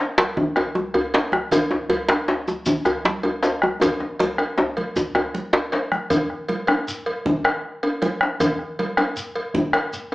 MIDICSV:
0, 0, Header, 1, 5, 480
1, 0, Start_track
1, 0, Tempo, 382409
1, 1905, Time_signature, 12, 3, 24, 8
1, 12738, End_track
2, 0, Start_track
2, 0, Title_t, "Bombo"
2, 461, Note_on_c, 9, 37, 28
2, 461, Note_on_c, 9, 43, 95
2, 587, Note_off_c, 9, 37, 0
2, 587, Note_off_c, 9, 43, 0
2, 701, Note_on_c, 9, 37, 65
2, 826, Note_off_c, 9, 37, 0
2, 1180, Note_on_c, 9, 37, 31
2, 1306, Note_off_c, 9, 37, 0
2, 1670, Note_on_c, 9, 37, 75
2, 1795, Note_off_c, 9, 37, 0
2, 1908, Note_on_c, 9, 43, 86
2, 2034, Note_off_c, 9, 43, 0
2, 2631, Note_on_c, 9, 37, 71
2, 2756, Note_off_c, 9, 37, 0
2, 3346, Note_on_c, 9, 37, 30
2, 3346, Note_on_c, 9, 43, 96
2, 3472, Note_off_c, 9, 37, 0
2, 3472, Note_off_c, 9, 43, 0
2, 3582, Note_on_c, 9, 37, 64
2, 3708, Note_off_c, 9, 37, 0
2, 4066, Note_on_c, 9, 37, 29
2, 4191, Note_off_c, 9, 37, 0
2, 4542, Note_on_c, 9, 37, 72
2, 4667, Note_off_c, 9, 37, 0
2, 4783, Note_on_c, 9, 37, 28
2, 4783, Note_on_c, 9, 43, 81
2, 4908, Note_off_c, 9, 37, 0
2, 4908, Note_off_c, 9, 43, 0
2, 5501, Note_on_c, 9, 37, 62
2, 5627, Note_off_c, 9, 37, 0
2, 6219, Note_on_c, 9, 43, 88
2, 6345, Note_off_c, 9, 43, 0
2, 6463, Note_on_c, 9, 37, 65
2, 6588, Note_off_c, 9, 37, 0
2, 6705, Note_on_c, 9, 37, 27
2, 6830, Note_off_c, 9, 37, 0
2, 6941, Note_on_c, 9, 37, 25
2, 7067, Note_off_c, 9, 37, 0
2, 7189, Note_on_c, 9, 37, 28
2, 7315, Note_off_c, 9, 37, 0
2, 7427, Note_on_c, 9, 37, 66
2, 7552, Note_off_c, 9, 37, 0
2, 7663, Note_on_c, 9, 43, 120
2, 7788, Note_off_c, 9, 43, 0
2, 7907, Note_on_c, 9, 37, 38
2, 8032, Note_off_c, 9, 37, 0
2, 8389, Note_on_c, 9, 37, 82
2, 8514, Note_off_c, 9, 37, 0
2, 9104, Note_on_c, 9, 43, 115
2, 9230, Note_off_c, 9, 43, 0
2, 9350, Note_on_c, 9, 37, 90
2, 9476, Note_off_c, 9, 37, 0
2, 9829, Note_on_c, 9, 37, 36
2, 9955, Note_off_c, 9, 37, 0
2, 10068, Note_on_c, 9, 37, 33
2, 10193, Note_off_c, 9, 37, 0
2, 10302, Note_on_c, 9, 37, 85
2, 10428, Note_off_c, 9, 37, 0
2, 10542, Note_on_c, 9, 43, 112
2, 10668, Note_off_c, 9, 43, 0
2, 10782, Note_on_c, 9, 37, 36
2, 10908, Note_off_c, 9, 37, 0
2, 11262, Note_on_c, 9, 37, 85
2, 11388, Note_off_c, 9, 37, 0
2, 11975, Note_on_c, 9, 43, 115
2, 12100, Note_off_c, 9, 43, 0
2, 12216, Note_on_c, 9, 37, 85
2, 12342, Note_off_c, 9, 37, 0
2, 12738, End_track
3, 0, Start_track
3, 0, Title_t, "Djembe"
3, 225, Note_on_c, 9, 62, 105
3, 351, Note_off_c, 9, 62, 0
3, 466, Note_on_c, 9, 63, 70
3, 476, Note_on_c, 9, 64, 69
3, 591, Note_off_c, 9, 63, 0
3, 602, Note_off_c, 9, 64, 0
3, 711, Note_on_c, 9, 62, 60
3, 714, Note_on_c, 9, 63, 75
3, 836, Note_off_c, 9, 62, 0
3, 840, Note_off_c, 9, 63, 0
3, 944, Note_on_c, 9, 63, 77
3, 1069, Note_off_c, 9, 63, 0
3, 1191, Note_on_c, 9, 62, 25
3, 1191, Note_on_c, 9, 63, 60
3, 1195, Note_on_c, 9, 64, 80
3, 1316, Note_off_c, 9, 62, 0
3, 1316, Note_off_c, 9, 63, 0
3, 1320, Note_off_c, 9, 64, 0
3, 1436, Note_on_c, 9, 62, 80
3, 1561, Note_off_c, 9, 62, 0
3, 1672, Note_on_c, 9, 63, 79
3, 1798, Note_off_c, 9, 63, 0
3, 1911, Note_on_c, 9, 63, 81
3, 1913, Note_on_c, 9, 64, 82
3, 2036, Note_off_c, 9, 63, 0
3, 2038, Note_off_c, 9, 64, 0
3, 2143, Note_on_c, 9, 63, 78
3, 2151, Note_on_c, 9, 62, 60
3, 2268, Note_off_c, 9, 63, 0
3, 2276, Note_off_c, 9, 62, 0
3, 2378, Note_on_c, 9, 64, 81
3, 2504, Note_off_c, 9, 64, 0
3, 2617, Note_on_c, 9, 62, 104
3, 2635, Note_on_c, 9, 63, 52
3, 2743, Note_off_c, 9, 62, 0
3, 2761, Note_off_c, 9, 63, 0
3, 2864, Note_on_c, 9, 62, 72
3, 2865, Note_on_c, 9, 63, 79
3, 2989, Note_off_c, 9, 62, 0
3, 2991, Note_off_c, 9, 63, 0
3, 3114, Note_on_c, 9, 63, 80
3, 3240, Note_off_c, 9, 63, 0
3, 3342, Note_on_c, 9, 64, 68
3, 3353, Note_on_c, 9, 63, 75
3, 3467, Note_off_c, 9, 64, 0
3, 3478, Note_off_c, 9, 63, 0
3, 3579, Note_on_c, 9, 62, 53
3, 3594, Note_on_c, 9, 64, 77
3, 3704, Note_off_c, 9, 62, 0
3, 3720, Note_off_c, 9, 64, 0
3, 3832, Note_on_c, 9, 62, 98
3, 3958, Note_off_c, 9, 62, 0
3, 4059, Note_on_c, 9, 62, 20
3, 4059, Note_on_c, 9, 63, 48
3, 4080, Note_off_c, 9, 63, 0
3, 4080, Note_on_c, 9, 63, 76
3, 4185, Note_off_c, 9, 62, 0
3, 4206, Note_off_c, 9, 63, 0
3, 4299, Note_on_c, 9, 62, 72
3, 4318, Note_on_c, 9, 63, 76
3, 4425, Note_off_c, 9, 62, 0
3, 4444, Note_off_c, 9, 63, 0
3, 4560, Note_on_c, 9, 63, 77
3, 4685, Note_off_c, 9, 63, 0
3, 4780, Note_on_c, 9, 64, 66
3, 4792, Note_on_c, 9, 63, 102
3, 4905, Note_off_c, 9, 64, 0
3, 4917, Note_off_c, 9, 63, 0
3, 5024, Note_on_c, 9, 62, 51
3, 5150, Note_off_c, 9, 62, 0
3, 5272, Note_on_c, 9, 63, 97
3, 5398, Note_off_c, 9, 63, 0
3, 5501, Note_on_c, 9, 62, 19
3, 5501, Note_on_c, 9, 63, 49
3, 5627, Note_off_c, 9, 62, 0
3, 5627, Note_off_c, 9, 63, 0
3, 5743, Note_on_c, 9, 62, 69
3, 5753, Note_on_c, 9, 63, 104
3, 5869, Note_off_c, 9, 62, 0
3, 5878, Note_off_c, 9, 63, 0
3, 6224, Note_on_c, 9, 62, 20
3, 6224, Note_on_c, 9, 64, 69
3, 6230, Note_on_c, 9, 63, 95
3, 6349, Note_off_c, 9, 62, 0
3, 6349, Note_off_c, 9, 64, 0
3, 6356, Note_off_c, 9, 63, 0
3, 6467, Note_on_c, 9, 63, 97
3, 6473, Note_on_c, 9, 62, 51
3, 6592, Note_off_c, 9, 63, 0
3, 6598, Note_off_c, 9, 62, 0
3, 6710, Note_on_c, 9, 62, 21
3, 6835, Note_off_c, 9, 62, 0
3, 6943, Note_on_c, 9, 62, 98
3, 6955, Note_off_c, 9, 62, 0
3, 6955, Note_on_c, 9, 62, 22
3, 6955, Note_on_c, 9, 63, 51
3, 7081, Note_off_c, 9, 62, 0
3, 7081, Note_off_c, 9, 63, 0
3, 7192, Note_on_c, 9, 62, 73
3, 7318, Note_off_c, 9, 62, 0
3, 7670, Note_on_c, 9, 64, 77
3, 7796, Note_off_c, 9, 64, 0
3, 8392, Note_on_c, 9, 62, 59
3, 8392, Note_on_c, 9, 63, 60
3, 8518, Note_off_c, 9, 62, 0
3, 8518, Note_off_c, 9, 63, 0
3, 8634, Note_on_c, 9, 62, 24
3, 8759, Note_off_c, 9, 62, 0
3, 9118, Note_on_c, 9, 64, 71
3, 9244, Note_off_c, 9, 64, 0
3, 9355, Note_on_c, 9, 62, 60
3, 9480, Note_off_c, 9, 62, 0
3, 9834, Note_on_c, 9, 63, 58
3, 9960, Note_off_c, 9, 63, 0
3, 10083, Note_on_c, 9, 62, 26
3, 10209, Note_off_c, 9, 62, 0
3, 10328, Note_on_c, 9, 62, 57
3, 10453, Note_off_c, 9, 62, 0
3, 10549, Note_on_c, 9, 64, 86
3, 10674, Note_off_c, 9, 64, 0
3, 11270, Note_on_c, 9, 62, 60
3, 11270, Note_on_c, 9, 63, 58
3, 11396, Note_off_c, 9, 62, 0
3, 11396, Note_off_c, 9, 63, 0
3, 11988, Note_on_c, 9, 64, 70
3, 12113, Note_off_c, 9, 64, 0
3, 12223, Note_on_c, 9, 62, 60
3, 12349, Note_off_c, 9, 62, 0
3, 12738, End_track
4, 0, Start_track
4, 0, Title_t, "Shekere"
4, 1912, Note_on_c, 9, 82, 60
4, 2038, Note_off_c, 9, 82, 0
4, 3109, Note_on_c, 9, 82, 19
4, 3234, Note_off_c, 9, 82, 0
4, 3337, Note_on_c, 9, 82, 59
4, 3462, Note_off_c, 9, 82, 0
4, 3582, Note_on_c, 9, 82, 19
4, 3707, Note_off_c, 9, 82, 0
4, 4310, Note_on_c, 9, 82, 18
4, 4435, Note_off_c, 9, 82, 0
4, 4799, Note_on_c, 9, 82, 55
4, 4924, Note_off_c, 9, 82, 0
4, 6229, Note_on_c, 9, 82, 53
4, 6355, Note_off_c, 9, 82, 0
4, 7669, Note_on_c, 9, 82, 57
4, 7795, Note_off_c, 9, 82, 0
4, 8635, Note_on_c, 9, 82, 61
4, 8760, Note_off_c, 9, 82, 0
4, 10552, Note_on_c, 9, 82, 66
4, 10678, Note_off_c, 9, 82, 0
4, 11503, Note_on_c, 9, 82, 61
4, 11629, Note_off_c, 9, 82, 0
4, 12465, Note_on_c, 9, 82, 57
4, 12591, Note_off_c, 9, 82, 0
4, 12738, End_track
5, 0, Start_track
5, 0, Title_t, "Drums"
5, 223, Note_on_c, 9, 63, 54
5, 228, Note_on_c, 9, 56, 50
5, 349, Note_off_c, 9, 63, 0
5, 354, Note_off_c, 9, 56, 0
5, 464, Note_on_c, 9, 64, 74
5, 590, Note_off_c, 9, 64, 0
5, 708, Note_on_c, 9, 56, 49
5, 834, Note_off_c, 9, 56, 0
5, 944, Note_on_c, 9, 63, 72
5, 1069, Note_off_c, 9, 63, 0
5, 1183, Note_on_c, 9, 56, 53
5, 1184, Note_on_c, 9, 63, 25
5, 1309, Note_off_c, 9, 56, 0
5, 1310, Note_off_c, 9, 63, 0
5, 1429, Note_on_c, 9, 56, 53
5, 1554, Note_off_c, 9, 56, 0
5, 1659, Note_on_c, 9, 63, 59
5, 1785, Note_off_c, 9, 63, 0
5, 1901, Note_on_c, 9, 64, 79
5, 1908, Note_on_c, 9, 56, 67
5, 2026, Note_off_c, 9, 64, 0
5, 2033, Note_off_c, 9, 56, 0
5, 2380, Note_on_c, 9, 63, 73
5, 2382, Note_on_c, 9, 56, 57
5, 2506, Note_off_c, 9, 63, 0
5, 2507, Note_off_c, 9, 56, 0
5, 2622, Note_on_c, 9, 56, 53
5, 2748, Note_off_c, 9, 56, 0
5, 3110, Note_on_c, 9, 63, 64
5, 3235, Note_off_c, 9, 63, 0
5, 3348, Note_on_c, 9, 64, 81
5, 3473, Note_off_c, 9, 64, 0
5, 3585, Note_on_c, 9, 56, 47
5, 3711, Note_off_c, 9, 56, 0
5, 3826, Note_on_c, 9, 63, 80
5, 3952, Note_off_c, 9, 63, 0
5, 4058, Note_on_c, 9, 56, 44
5, 4071, Note_on_c, 9, 63, 25
5, 4184, Note_off_c, 9, 56, 0
5, 4197, Note_off_c, 9, 63, 0
5, 4303, Note_on_c, 9, 56, 46
5, 4428, Note_off_c, 9, 56, 0
5, 4556, Note_on_c, 9, 63, 64
5, 4682, Note_off_c, 9, 63, 0
5, 4788, Note_on_c, 9, 56, 59
5, 4799, Note_on_c, 9, 64, 79
5, 4913, Note_off_c, 9, 56, 0
5, 4924, Note_off_c, 9, 64, 0
5, 5035, Note_on_c, 9, 63, 26
5, 5161, Note_off_c, 9, 63, 0
5, 5265, Note_on_c, 9, 56, 50
5, 5273, Note_on_c, 9, 63, 78
5, 5391, Note_off_c, 9, 56, 0
5, 5398, Note_off_c, 9, 63, 0
5, 5508, Note_on_c, 9, 56, 45
5, 5634, Note_off_c, 9, 56, 0
5, 5985, Note_on_c, 9, 56, 45
5, 5998, Note_on_c, 9, 63, 58
5, 6110, Note_off_c, 9, 56, 0
5, 6123, Note_off_c, 9, 63, 0
5, 6235, Note_on_c, 9, 64, 71
5, 6361, Note_off_c, 9, 64, 0
5, 6464, Note_on_c, 9, 56, 44
5, 6486, Note_on_c, 9, 63, 24
5, 6590, Note_off_c, 9, 56, 0
5, 6611, Note_off_c, 9, 63, 0
5, 6710, Note_on_c, 9, 63, 73
5, 6835, Note_off_c, 9, 63, 0
5, 6940, Note_on_c, 9, 56, 47
5, 7066, Note_off_c, 9, 56, 0
5, 7182, Note_on_c, 9, 56, 45
5, 7193, Note_on_c, 9, 63, 23
5, 7308, Note_off_c, 9, 56, 0
5, 7318, Note_off_c, 9, 63, 0
5, 7430, Note_on_c, 9, 63, 59
5, 7556, Note_off_c, 9, 63, 0
5, 7660, Note_on_c, 9, 56, 62
5, 7663, Note_on_c, 9, 63, 24
5, 7663, Note_on_c, 9, 64, 73
5, 7785, Note_off_c, 9, 56, 0
5, 7789, Note_off_c, 9, 63, 0
5, 7789, Note_off_c, 9, 64, 0
5, 8140, Note_on_c, 9, 56, 50
5, 8149, Note_on_c, 9, 63, 76
5, 8265, Note_off_c, 9, 56, 0
5, 8275, Note_off_c, 9, 63, 0
5, 8376, Note_on_c, 9, 56, 51
5, 8390, Note_on_c, 9, 63, 25
5, 8502, Note_off_c, 9, 56, 0
5, 8515, Note_off_c, 9, 63, 0
5, 8864, Note_on_c, 9, 56, 49
5, 8877, Note_on_c, 9, 63, 25
5, 8990, Note_off_c, 9, 56, 0
5, 9002, Note_off_c, 9, 63, 0
5, 9111, Note_on_c, 9, 63, 80
5, 9111, Note_on_c, 9, 64, 80
5, 9236, Note_off_c, 9, 63, 0
5, 9236, Note_off_c, 9, 64, 0
5, 9345, Note_on_c, 9, 56, 47
5, 9470, Note_off_c, 9, 56, 0
5, 9829, Note_on_c, 9, 56, 52
5, 9954, Note_off_c, 9, 56, 0
5, 10063, Note_on_c, 9, 56, 51
5, 10071, Note_on_c, 9, 63, 85
5, 10189, Note_off_c, 9, 56, 0
5, 10196, Note_off_c, 9, 63, 0
5, 10547, Note_on_c, 9, 56, 62
5, 10550, Note_on_c, 9, 63, 29
5, 10550, Note_on_c, 9, 64, 91
5, 10673, Note_off_c, 9, 56, 0
5, 10676, Note_off_c, 9, 63, 0
5, 10676, Note_off_c, 9, 64, 0
5, 11034, Note_on_c, 9, 56, 54
5, 11038, Note_on_c, 9, 63, 84
5, 11160, Note_off_c, 9, 56, 0
5, 11164, Note_off_c, 9, 63, 0
5, 11268, Note_on_c, 9, 56, 52
5, 11277, Note_on_c, 9, 63, 25
5, 11394, Note_off_c, 9, 56, 0
5, 11403, Note_off_c, 9, 63, 0
5, 11742, Note_on_c, 9, 56, 49
5, 11750, Note_on_c, 9, 63, 26
5, 11868, Note_off_c, 9, 56, 0
5, 11875, Note_off_c, 9, 63, 0
5, 11983, Note_on_c, 9, 63, 83
5, 11983, Note_on_c, 9, 64, 79
5, 12108, Note_off_c, 9, 63, 0
5, 12108, Note_off_c, 9, 64, 0
5, 12222, Note_on_c, 9, 56, 49
5, 12347, Note_off_c, 9, 56, 0
5, 12738, End_track
0, 0, End_of_file